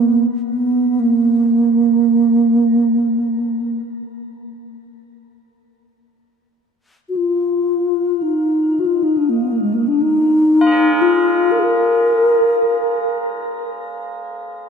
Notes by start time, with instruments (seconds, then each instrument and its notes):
Already playing: bass flute A#3
0.49 bass flute B3
0.99 bass flute A#3
7.09 bass flute F#4
7.16 bass flute F4
8.22 bass flute D#4
8.79 bass flute F#4
8.86 bass flute F4
9.03 bass flute D#4
9.17 bass flute D4
9.29 bass flute A#3
9.42 bass flute B3
9.52 bass flute A#3
9.61 bass flute G#3
9.74 bass flute A#3
9.88 bass flute D4
10.01 bass flute D#4
10.61 tubular bells F4
10.67 tubular bells G#4
10.72 tubular bells A#4
11.01 bass flute F4
11.51 bass flute A#4
11.59 bass flute G#4
11.63 bass flute A#4